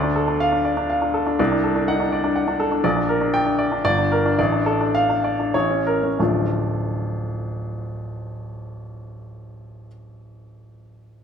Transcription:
0.00 1.35 D2 medium
0.00 0.23 D4 medium
0.00 0.30 D5 medium
0.16 0.55 A4 medium
0.28 0.47 D4 medium
0.40 0.79 F5 medium
0.52 0.72 D4 medium
0.65 1.04 D5 medium
0.77 0.97 D4 medium
0.90 1.29 F5 medium
1.02 1.21 D4 medium
1.14 1.39 A4 medium
1.27 1.39 D4 medium
1.39 2.80 C2 medium
1.39 1.78 D5 medium
1.52 1.71 D4 medium
1.64 2.02 A4 medium
1.76 1.95 D4 medium
1.88 2.00 D#4 medium
1.88 2.26 F#5 medium
2.00 2.19 D4 medium
2.12 2.50 D5 medium
2.24 2.43 D4 medium
2.36 2.74 F#5 medium
2.48 2.67 D4 medium
2.60 2.84 A4 medium
2.72 2.84 D4 medium
2.84 3.81 A#1 medium
2.84 3.23 D5 medium
2.96 3.16 D4 medium
3.09 3.48 A#4 medium
3.21 3.40 D4 medium
3.34 3.74 G5 medium
3.46 3.66 D4 medium
3.59 3.83 D5 medium
3.72 3.84 D4 medium
3.85 4.37 G1 medium
3.85 4.27 D5 loud
3.98 4.19 D4 medium
4.12 4.38 A#4 medium
4.26 4.38 D4 medium
4.39 5.51 A1 medium
4.39 4.83 D5 medium
4.52 4.74 D4 medium
4.66 5.12 A4 medium
4.80 5.03 D4 medium
4.95 5.42 F5 medium
5.10 5.33 D4 medium
5.24 5.54 D5 medium
5.39 5.54 D4 medium
5.54 6.17 A1 medium
5.54 6.06 C#5 medium
5.70 5.96 C#4 medium
5.87 6.19 A#4 medium
6.03 6.19 C#4 medium
6.19 9.87 D1 medium
6.19 9.87 A1 soft
6.19 9.87 F3 soft
6.19 9.87 A3 medium
6.19 9.88 D4 soft
6.19 9.88 F4 soft

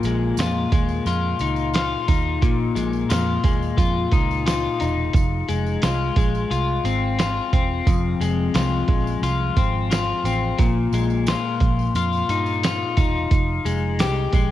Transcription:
0.00 0.31 A#1 loud
0.00 2.41 A#2 medium
0.00 0.38 F4 medium
0.00 tambourine medium
0.04 0.71 G#3 medium
0.04 closed hi-hat medium
0.37 0.65 F2 medium
0.37 1.06 F4 medium
0.37 snare loud
0.37 closed hi-hat medium
0.37 tambourine medium
0.72 0.99 D#2 medium
0.72 2.75 G#3 medium
0.72 kick loud
0.72 closed hi-hat medium
0.72 tambourine soft
0.88 tambourine soft
1.05 1.33 F2 loud
1.05 1.74 F4 medium
1.05 closed hi-hat medium
1.05 tambourine soft
1.39 1.94 C#2 medium
1.39 2.08 D#4 medium
1.39 closed hi-hat medium
1.39 tambourine soft
1.56 tambourine soft
1.73 3.09 F4 medium
1.73 snare loud
1.73 closed hi-hat loud
1.73 tambourine medium
2.08 2.43 D#2 medium
2.08 4.12 D#4 medium
2.08 kick medium
2.08 closed hi-hat medium
2.08 tambourine soft
2.42 2.70 A#1 loud
2.42 5.14 A#2 medium
2.42 kick loud
2.42 closed hi-hat medium
2.42 tambourine medium
2.75 3.03 A#1 medium
2.75 3.44 G#3 medium
2.75 closed hi-hat medium
2.75 tambourine medium
2.93 tambourine soft
3.10 3.38 F2 loud
3.10 3.77 F4 medium
3.10 snare loud
3.10 closed hi-hat medium
3.10 tambourine medium
3.44 3.71 D#2 medium
3.44 5.48 G#3 medium
3.44 kick loud
3.44 closed hi-hat medium
3.44 tambourine soft
3.62 tambourine soft
3.78 4.05 F2 loud
3.78 4.46 F4 medium
3.78 kick medium
3.78 closed hi-hat medium
3.78 tambourine soft
4.12 4.67 C#2 medium
4.12 4.80 D#4 medium
4.12 kick loud
4.12 closed hi-hat medium
4.12 tambourine soft
4.31 tambourine soft
4.46 5.83 F4 medium
4.46 snare loud
4.46 closed hi-hat medium
4.46 tambourine medium
4.80 5.08 E1 medium
4.80 5.86 D#4 medium
4.80 snare soft
4.80 closed hi-hat medium
4.80 tambourine soft
5.13 5.42 F1 loud
5.13 kick loud
5.13 closed hi-hat medium
5.13 tambourine medium
5.49 5.76 F1 loud
5.49 6.17 G#3 medium
5.49 closed hi-hat medium
5.49 tambourine soft
5.66 tambourine soft
5.82 6.10 C2 medium
5.82 6.50 F4 medium
5.82 snare loud
5.82 closed hi-hat medium
5.82 tambourine medium
6.16 6.44 A#1 medium
6.16 8.20 G#3 medium
6.16 kick loud
6.16 closed hi-hat medium
6.16 tambourine soft
6.35 tambourine soft
6.50 6.78 C2 medium
6.50 7.19 F4 medium
6.50 closed hi-hat medium
6.50 tambourine soft
6.84 7.39 G#1 medium
6.84 7.52 C4 medium
6.84 closed hi-hat medium
6.84 tambourine soft
7.19 8.54 F4 medium
7.19 snare loud
7.19 closed hi-hat medium
7.19 tambourine medium
7.53 7.80 E1 medium
7.53 9.57 C4 medium
7.53 kick medium
7.53 closed hi-hat medium
7.53 tambourine soft
7.87 8.14 F1 loud
7.87 10.59 F2 medium
7.87 kick loud
7.87 closed hi-hat medium
7.87 tambourine medium
8.20 8.47 F1 loud
8.20 8.88 G#3 medium
8.20 closed hi-hat medium
8.20 tambourine medium
8.54 8.81 C2 medium
8.54 9.23 F4 medium
8.54 snare loud
8.54 closed hi-hat medium
8.54 tambourine medium
8.88 9.16 A#1 medium
8.88 10.93 G#3 medium
8.88 kick loud
8.88 closed hi-hat medium
8.88 tambourine soft
9.07 tambourine soft
9.22 9.49 C2 medium
9.22 9.90 F4 medium
9.22 closed hi-hat medium
9.22 tambourine medium
9.57 10.11 G#1 medium
9.57 10.24 C4 medium
9.57 kick loud
9.57 closed hi-hat medium
9.57 tambourine soft
9.91 11.28 F4 medium
9.91 snare loud
9.91 closed hi-hat medium
9.91 tambourine medium
10.24 10.52 A1 medium
10.24 10.66 C4 medium
10.24 closed hi-hat medium
10.24 tambourine medium
10.58 10.86 A#1 loud
10.58 13.31 A#2 medium
10.58 kick loud
10.58 closed hi-hat medium
10.58 tambourine medium
10.92 11.33 A#1 loud
10.92 13.65 G#3 medium
10.92 closed hi-hat medium
10.92 tambourine medium
11.10 tambourine soft
11.27 11.96 F4 medium
11.27 snare loud
11.27 closed hi-hat medium
11.27 tambourine medium
11.60 11.88 A#1 loud
11.60 kick loud
11.60 closed hi-hat medium
11.60 tambourine soft
11.79 tambourine soft
11.94 12.22 F2 loud
11.94 12.64 F4 medium
11.94 closed hi-hat medium
11.94 tambourine soft
12.13 tambourine soft
12.28 12.83 G2 medium
12.28 12.97 D#4 medium
12.28 closed hi-hat medium
12.28 tambourine soft
12.46 tambourine soft
12.64 13.99 F4 medium
12.64 snare loud
12.64 closed hi-hat medium
12.64 tambourine medium
12.97 13.25 E1 medium
12.97 14.51 D#4 medium
12.97 kick loud
12.97 closed hi-hat medium
12.97 tambourine soft
13.31 13.59 F1 medium
13.31 kick loud
13.31 closed hi-hat medium
13.31 tambourine medium
13.65 14.01 F1 loud
13.65 14.33 G#3 medium
13.65 closed hi-hat medium
13.65 tambourine medium
13.99 14.27 C2 medium
13.99 14.51 G4 medium
13.99 snare loud
13.99 closed hi-hat medium
13.99 tambourine medium
14.32 14.51 A#1 medium
14.32 14.51 G#3 medium
14.32 kick loud
14.32 closed hi-hat medium
14.32 tambourine soft

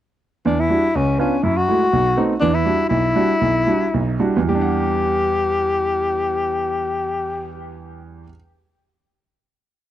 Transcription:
0.45 0.66 E2 medium
0.45 0.61 D4 medium
0.60 0.97 E4 medium
0.70 0.85 G3 soft
0.70 0.85 D4 soft
0.70 0.85 E4 soft
0.70 0.85 F#4 medium
0.95 1.15 C#2 medium
0.95 1.19 C#4 medium
1.18 1.33 B3 medium
1.18 1.34 C#4 medium
1.18 1.45 C#4 medium
1.18 1.34 D4 soft
1.18 1.34 F4 medium
1.43 1.64 F#2 medium
1.43 1.59 E4 medium
1.57 2.30 F#4 medium
1.68 1.83 G#3 medium
1.68 1.83 A3 soft
1.68 1.83 E4 soft
1.68 1.83 F#4 soft
1.93 2.13 B1 medium
2.17 2.32 A3 medium
2.17 2.32 B3 soft
2.17 2.32 C4 medium
2.17 2.32 D#4 medium
2.40 2.62 E2 medium
2.40 2.62 E3 medium
2.40 2.56 D4 medium
2.55 2.89 E4 medium
2.65 2.81 G3 soft
2.65 2.81 D4 soft
2.65 2.81 E4 soft
2.65 2.81 F#4 medium
2.89 3.11 B1 medium
2.89 4.16 E4 medium
3.16 3.31 G3 medium
3.16 3.31 D4 soft
3.16 3.31 E4 soft
3.16 3.31 F#4 medium
3.41 3.63 B1 medium
3.67 3.83 G3 soft
3.67 3.83 D4 soft
3.67 3.83 E4 soft
3.67 3.83 F#4 soft
3.94 4.17 B1 medium
4.20 4.37 G3 medium
4.20 4.37 D4 medium
4.20 4.37 E4 soft
4.20 4.38 F#4 medium
4.36 8.22 E2 medium
4.43 8.26 E3 medium
4.48 8.29 G3 medium
4.48 7.54 G4 medium
4.55 8.32 D4 medium
4.61 8.35 F#5 medium

